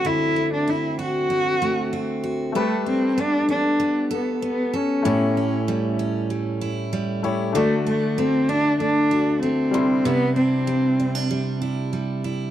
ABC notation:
X:1
M:4/4
L:1/16
Q:1/4=96
K:G
V:1 name="Grand piano"
z16 | [A,GB]16 | [A,EG^c]12- [A,EGc]2 [A,EGc]2 | [A,DFd]12- [A,DFd]2 [G,DEc']2- |
[G,DEc']12- [G,DEc']2 z2 |]
V:2 name="Cello"
E3 D E2 F8 z2 | A,2 C2 D2 D4 B,2 B,2 ^C2- | ^C6 z8 z2 | A,2 A,2 C2 D2 D4 C4 |
B,2 C8 z6 |]
V:3 name="Steel-string acoustic guitar"
[D,A,CF]2 A,2 C2 F2 C2 A,2 C2 F2 | [G,A]2 D2 B,2 C z B,2 A2 B,2 A2 | [A,,E]2 ^C2 G,2 C2 G,2 E2 G,2 E2 | [D,F]2 D2 A,2 D2 A,2 F2 A,2 C,2 |
[C,E]2 D2 G,2 C D G,2 E2 G,2 E2 |]